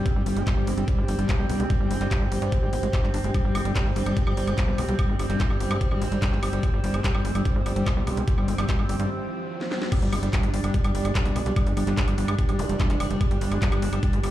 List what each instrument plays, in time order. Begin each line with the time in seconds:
Already playing: ambient pad C4, analog synth pad D4 G4 G5
0.06 acid bass G#3, kick, closed hi-hat
0.16 analog synth bass G1, acid bass G3
0.26 analog synth bass G1, acid bass G3, open hi-hat
0.36 analog synth bass G1, acid bass G#3, closed hi-hat
0.47 acid bass G3, kick, clap, closed hi-hat
0.57 analog synth bass G1, acid bass G3
0.67 analog synth bass G1, acid bass G#3, open hi-hat
0.78 analog synth bass G1, acid bass G3, closed hi-hat
0.88 acid bass G3, kick, closed hi-hat
0.98 analog synth bass G1, acid bass G#3
1.08 analog synth bass G1, acid bass G3, open hi-hat
1.19 analog synth bass G1, acid bass G3, closed hi-hat
1.29 acid bass G#3, kick, clap, closed hi-hat
1.39 analog synth bass B1, acid bass G3
1.50 analog synth bass B1, acid bass G3, open hi-hat
1.60 analog synth bass B1, acid bass G#3, closed hi-hat
1.70 acid bass G3, kick, closed hi-hat
1.80 analog synth bass G1, acid bass G3
1.91 analog synth bass G1, acid bass G#3, open hi-hat
2.01 analog synth bass G1, acid bass G3, clap, closed hi-hat
2.11 acid bass G3, kick, clap, closed hi-hat
2.21 analog synth bass G1, acid bass G#3
2.32 analog synth bass G1, acid bass G3, open hi-hat
2.42 analog synth bass G2, acid bass G3, closed hi-hat
2.52 acid bass G#3, kick, closed hi-hat
2.63 analog synth bass G#1, acid bass G3
2.73 analog synth bass G#1, acid bass B3, open hi-hat
2.83 analog synth bass G#1, acid bass G#3, closed hi-hat
2.93 acid bass G4, kick, clap, closed hi-hat
3.04 analog synth bass G1, acid bass G3, clap
3.14 analog synth bass G1, acid bass D4, open hi-hat
3.24 analog synth bass G1, acid bass G#3, closed hi-hat
3.34 acid bass G3, kick, closed hi-hat, high woodblock
3.45 analog synth bass G1, acid bass G3
3.55 analog synth bass G1, acid bass G#3, open hi-hat, high woodblock
3.65 analog synth bass G1, acid bass G3, closed hi-hat
3.76 acid bass G3, kick, clap, closed hi-hat, high woodblock
3.86 analog synth bass G1, acid bass G#3
3.96 analog synth bass G1, acid bass G3, open hi-hat
4.06 analog synth bass G1, acid bass G3, closed hi-hat, high woodblock
4.17 acid bass G#3, kick, closed hi-hat
4.27 analog synth bass G1, acid bass G3, high woodblock
4.37 analog synth bass G1, acid bass G3, open hi-hat
4.47 analog synth bass G1, acid bass G#3, closed hi-hat, high woodblock
4.58 acid bass G3, kick, clap, closed hi-hat
4.68 analog synth bass B1, acid bass G3
4.78 analog synth bass B1, acid bass G#3, open hi-hat, high woodblock
4.89 analog synth bass B1, acid bass G3, closed hi-hat
4.99 acid bass G3, kick, closed hi-hat, high woodblock
5.09 analog synth bass G1, acid bass G#3
5.19 analog synth bass G1, acid bass G3, open hi-hat, high woodblock
5.30 analog synth bass G1, acid bass G3, clap, closed hi-hat
5.40 acid bass G#3, kick, clap, closed hi-hat
5.50 analog synth bass G1, acid bass G3, high woodblock
5.60 analog synth bass G1, acid bass G3, open hi-hat
5.71 analog synth bass G2, acid bass G#3, closed hi-hat, high woodblock
5.81 acid bass G3, kick, closed hi-hat
5.91 analog synth bass G#1, acid bass G3, high woodblock
6.02 analog synth bass G#1, acid bass G#3, open hi-hat
6.12 analog synth bass G#1, acid bass G3, closed hi-hat
6.22 acid bass G3, kick, clap, closed hi-hat, high woodblock
6.32 analog synth bass G1, acid bass G#3, clap
6.43 analog synth bass G1, acid bass G3, open hi-hat, high woodblock
6.53 analog synth bass G1, acid bass G3, closed hi-hat
6.63 acid bass G#3, kick, closed hi-hat, riser, high woodblock
6.73 analog synth bass G1, acid bass G3
6.84 analog synth bass G1, acid bass G3, open hi-hat
6.94 analog synth bass G1, acid bass G#3, closed hi-hat, high woodblock
7.04 acid bass G3, kick, clap, closed hi-hat
7.15 analog synth bass G1, acid bass G3, high woodblock
7.25 analog synth bass G1, acid bass G#3, open hi-hat
7.35 analog synth bass G1, acid bass G3, closed hi-hat, high woodblock
7.45 acid bass G3, kick, closed hi-hat
7.56 analog synth bass G1, acid bass G#3
7.66 analog synth bass G1, acid bass G3, open hi-hat, high woodblock
7.76 analog synth bass G1, acid bass G3, closed hi-hat
7.86 acid bass G#3, kick, clap, closed hi-hat, high woodblock
7.97 analog synth bass B1, acid bass G3
8.07 analog synth bass B1, acid bass G3, open hi-hat, high woodblock
8.17 analog synth bass B1, acid bass G#3, closed hi-hat
8.28 acid bass G3, kick, closed hi-hat
8.38 analog synth bass G1, acid bass G3, high woodblock
8.48 analog synth bass G1, acid bass G#3, open hi-hat
8.58 analog synth bass G1, acid bass G3, clap, closed hi-hat, high woodblock
8.69 acid bass G3, kick, clap, closed hi-hat
8.79 analog synth bass G1, acid bass G#3, high woodblock
8.89 analog synth bass G1, acid bass G3, open hi-hat
9.00 analog synth bass G2, acid bass G3, closed hi-hat
9.61 snare
9.71 snare
9.82 snare
9.92 acid bass G3, ambient pad D4, analog synth pad D4, kick, closed hi-hat, crash, high woodblock
9.99 analog synth bass G1, acid bass G3, analog synth pad G4, closed hi-hat
10.13 analog synth bass G1, acid bass G#3, open hi-hat, high woodblock
10.23 analog synth bass G1, acid bass G3, closed hi-hat
10.33 acid bass G3, kick, clap, closed hi-hat, high woodblock
10.43 analog synth bass G1, acid bass G#3, closed hi-hat
10.54 analog synth bass G1, acid bass G3, open hi-hat
10.64 analog synth bass G1, acid bass G3, closed hi-hat, high woodblock
10.74 acid bass G#3, kick, closed hi-hat
10.84 analog synth bass G1, acid bass G3, closed hi-hat, high woodblock
10.95 analog synth bass G1, acid bass G3, open hi-hat
11.05 analog synth bass G1, acid bass G#3, closed hi-hat, high woodblock
11.15 acid bass G3, kick, clap, closed hi-hat
11.26 analog synth bass B1, acid bass G3, closed hi-hat
11.36 analog synth bass B1, acid bass G#3, open hi-hat, high woodblock
11.46 analog synth bass B1, acid bass G3, closed hi-hat
11.56 acid bass G3, kick, closed hi-hat, high woodblock
11.67 analog synth bass G1, acid bass G#3, closed hi-hat
11.77 analog synth bass G1, acid bass G3, open hi-hat, high woodblock
11.87 analog synth bass G1, acid bass G3, clap, closed hi-hat
11.97 acid bass G#3, kick, clap, closed hi-hat
12.08 analog synth bass G1, acid bass G3, closed hi-hat, high woodblock
12.18 analog synth bass G1, acid bass G3, open hi-hat
12.28 analog synth bass G2, acid bass G#3, closed hi-hat, high woodblock
12.39 acid bass G3, kick, closed hi-hat
12.49 analog synth bass G#1, acid bass G3, closed hi-hat, high woodblock
12.59 analog synth bass F1, acid bass G#3, open hi-hat, zap
12.69 analog synth bass F1, acid bass G3, closed hi-hat
12.80 acid bass G3, kick, clap, closed hi-hat, high woodblock
12.90 analog synth bass F1, acid bass G#3, clap, closed hi-hat
13.00 analog synth bass F1, acid bass G3, open hi-hat, high woodblock
13.10 analog synth bass F1, acid bass G3, closed hi-hat
13.21 acid bass G#3, kick, closed hi-hat, high woodblock
13.31 analog synth bass G1, acid bass G3, closed hi-hat
13.41 analog synth bass G1, acid bass G3, open hi-hat
13.52 analog synth bass G1, acid bass G#3, closed hi-hat, high woodblock
13.62 acid bass G3, kick, clap, closed hi-hat
13.72 analog synth bass G1, acid bass G3, closed hi-hat, high woodblock
13.82 analog synth bass G1, acid bass G#3, open hi-hat
13.93 analog synth bass G1, acid bass G3, closed hi-hat, high woodblock
14.03 acid bass G3, kick, closed hi-hat
14.13 analog synth bass G1, acid bass G#3, closed hi-hat
14.23 analog synth bass G1, acid bass G3, open hi-hat, high woodblock